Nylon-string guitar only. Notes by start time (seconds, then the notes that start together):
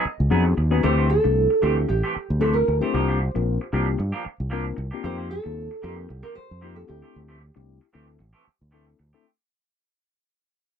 Already playing: D#5
0.83 C5
1.10 A4
1.62 G4
1.89 G4
2.41 A4
2.53 A#4
2.81 C5
5.05 C5
5.31 A4
5.83 G4
6.23 A#4
6.35 C5
6.76 A4
6.88 G4